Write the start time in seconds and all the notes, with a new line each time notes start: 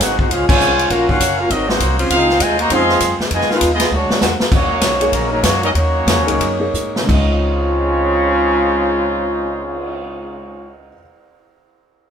0.00 G#1 D#4 F#4 G#4 C5 F#5, kick, snare, hi-hat pedal, ride
0.19 D#4 F#4 G#4 C5 F#5, kick
0.30 C#2 G#3 C#4 F4 G#4 C5 F5, kick, ride
0.48 F3 G#3 C#4 F4 C5 C#5 G#5, kick, crash
0.59 C2 C#3 A#3 C4 G#4, hi-hat pedal
0.79 ride
0.90 A#1 A#3 C#4 F4 F#4 A#4 F5, kick, ride
1.08 D#3 F#3 A#3 C#4 F4 F#4 A#4 F5 F#5, kick
1.20 F#1, kick, hi-hat pedal, ride
1.39 A#3 C#4 F4 F#4 A#4 F5
1.50 G#1 F#3 C4 D#4 F#4 A#4 D#5, kick, ride
1.68 D#3 F#3 A#3 C4 D#4 F#4 C5, snare
1.80 C2, kick, hi-hat pedal, ride
1.99 C#3 F3 C4 F4, ride
2.10 C#2 G#3 C4 D#4 F4 G#4 C5 F5, kick, ride
2.29 snare
2.40 D#2 C3 F3 G#3 F4 C5 D#5 G#5, kick, hi-hat pedal, ride
2.59 A#3 F#4 C5 D#5 A#5, ride
2.69 F2 C#3 F3 G#3 C4 D#4 G#4 D#5 F5 C6, kick, ride
2.89 snare
3.00 F#2, kick, hi-hat pedal, ride
3.19 muted upright bass stroke, snare
3.31 F2 B2 D#3 G#3 F4 B4 D#5 G#5, kick, ride
3.41 snare
3.49 D#3 G#3 B3 F4, muted upright bass stroke, snare
3.53 D#4 G#4 B4 F5
3.61 D#2, kick, hi-hat pedal, ride
3.72 G#3 B3 D#4 F4 G#4 D#5
3.80 snare, ride
3.91 D2 F#3 G#3 D4 F#4 C#5
4.10 muted upright bass stroke, snare
4.21 E2 D3 G#3 A#3 F#4, snare, hi-hat pedal
4.40 muted upright bass stroke, snare
4.52 D#2 F#3 A#3 C#4 D#4 F#4 C#5, kick, crash
4.81 B1, kick, snare, hi-hat pedal, ride
5.00 A#3 D#4 G#4 C#5, ride
5.12 A#1 C#3 F#3 A#3 C#4 D#4 A#4, kick, ride
5.32 C#3 F#3 A#3 C#4 D#4 A#4
5.43 F#2 F#3 A#3 C#4 D#4 F#4 C#5, kick, snare, hi-hat pedal, ride
5.63 F#3 A#3 C#4 D#4 F#4 A#4 D#5, ride
5.74 D#2 D#3 F#3 A#3 C#4 D#4 F#4 C#5, kick, ride
6.07 F2, kick, snare, hi-hat pedal, ride
6.17 D#2
6.25 C#2 A#3 D#4 G#4 C#5, ride
6.40 F#2, kick, ride
6.59 A#3 D#4 G#4 C#5
6.73 G#2, hi-hat pedal
6.96 snare
7.03 C#3 G#3
7.07 C#2 C#3 G#3 C4 D#4 F4 C#5, kick, crash
7.11 D#4 F4 D#5
7.31 cymbal swell